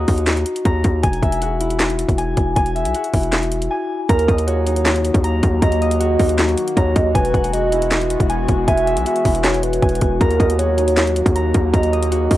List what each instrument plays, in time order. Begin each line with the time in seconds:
Already playing: harp F#4 D#5 A#5
0.08 808-style bass D#2, harp D#4, kick, open hi-hat
0.18 closed hi-hat
0.27 snare, clap, closed hi-hat
0.37 closed hi-hat
0.46 closed hi-hat
0.56 closed hi-hat
0.65 808-style bass D#2, harp A#5, kick, closed hi-hat
0.84 808-style bass D#2, kick, closed hi-hat
1.03 808-style bass E1, harp G#5, kick, closed hi-hat
1.13 closed hi-hat
1.22 808-style bass E1, harp E5, kick, closed hi-hat
1.32 closed hi-hat
1.42 harp F#4, closed hi-hat
1.61 harp E4, closed hi-hat
1.70 closed hi-hat
1.80 snare, clap, closed hi-hat
1.90 closed hi-hat
1.99 closed hi-hat
2.09 808-style bass E1, kick, closed hi-hat
2.18 harp G#5, closed hi-hat
2.37 808-style bass E1, kick, closed hi-hat
2.56 808-style bass E1, harp G#5, kick, closed hi-hat
2.66 closed hi-hat
2.75 harp E5, closed hi-hat
2.85 808-style bass B1, closed hi-hat
2.94 harp F#4, closed hi-hat
3.04 closed hi-hat
3.14 808-style bass E1, harp E4, kick, open hi-hat
3.23 closed hi-hat
3.33 snare, clap, closed hi-hat
3.43 closed hi-hat
3.52 closed hi-hat
3.62 closed hi-hat
3.71 harp G#5
4.09 808-style bass D#2, ambient pad D#3 F#3 A#3 F#4, soft synth lead A#4, harp A#5, kick, closed hi-hat
4.19 closed hi-hat
4.28 808-style bass D#2, harp D#5, kick, closed hi-hat
4.38 closed hi-hat
4.47 harp F#4, soft synth lead C#5, closed hi-hat
4.67 harp D#4, closed hi-hat
4.76 closed hi-hat
4.86 snare, clap, closed hi-hat
4.96 closed hi-hat
5.05 closed hi-hat
5.14 808-style bass D#2, kick, closed hi-hat
5.24 harp A#5, closed hi-hat
5.43 808-style bass D#2, kick, closed hi-hat
5.62 808-style bass D#2, soft synth lead D#5, harp A#5, kick, closed hi-hat
5.72 closed hi-hat
5.81 harp D#5, closed hi-hat
5.91 closed hi-hat
6.00 harp F#4, soft synth lead D#5, closed hi-hat
6.19 808-style bass D#2, harp D#4, kick, open hi-hat
6.29 closed hi-hat
6.39 snare, clap, closed hi-hat
6.49 closed hi-hat
6.58 closed hi-hat
6.68 closed hi-hat
6.77 808-style bass D#2, soft synth lead C#5, harp A#5, kick, closed hi-hat
6.96 808-style bass D#2, soft synth lead D#5, kick, closed hi-hat
7.15 808-style bass E1, ambient pad E3 G#3 B3, soft synth lead B4, harp G#5, kick, closed hi-hat
7.25 closed hi-hat
7.34 808-style bass E1, harp F#5, kick, closed hi-hat
7.44 closed hi-hat
7.53 harp F#4, soft synth lead D#5, closed hi-hat
7.72 harp E4, closed hi-hat
7.82 closed hi-hat
7.91 snare, clap, closed hi-hat
8.01 closed hi-hat
8.10 closed hi-hat
8.20 808-style bass E1, kick, closed hi-hat
8.29 harp G#5, closed hi-hat
8.48 808-style bass E1, kick, closed hi-hat
8.67 808-style bass E1, soft synth lead E5, harp G#5, kick, closed hi-hat
8.78 closed hi-hat
8.87 harp E5, closed hi-hat
8.96 808-style bass B1, closed hi-hat
9.06 harp F#4, soft synth lead E5, closed hi-hat
9.16 closed hi-hat
9.25 808-style bass E1, harp E4, kick, open hi-hat
9.35 closed hi-hat
9.44 soft synth lead C#5, snare, clap, closed hi-hat
9.54 closed hi-hat
9.63 soft synth lead B4, closed hi-hat
9.73 closed hi-hat
9.82 808-style bass E1, harp G#5, kick, closed hi-hat
9.89 closed hi-hat
9.95 closed hi-hat
10.01 808-style bass E1, kick, closed hi-hat
10.21 808-style bass D#2, ambient pad D#3 F#3 A#3, soft synth lead A#4, harp A#5, kick, closed hi-hat
10.31 closed hi-hat
10.39 808-style bass D#2, harp D#5, kick, closed hi-hat
10.50 closed hi-hat
10.58 harp F#4, soft synth lead C#5, closed hi-hat
10.78 harp D#4, closed hi-hat
10.88 closed hi-hat
10.97 snare, clap, closed hi-hat
11.07 closed hi-hat
11.16 closed hi-hat
11.26 808-style bass D#2, kick, closed hi-hat
11.35 harp A#5, closed hi-hat
11.54 808-style bass D#2, kick, closed hi-hat
11.73 808-style bass D#2, soft synth lead D#5, harp A#5, kick, closed hi-hat
11.83 closed hi-hat
11.93 harp D#5, closed hi-hat
12.03 closed hi-hat
12.11 harp F#4, soft synth lead D#5, closed hi-hat
12.31 808-style bass D#2, harp D#4, kick, open hi-hat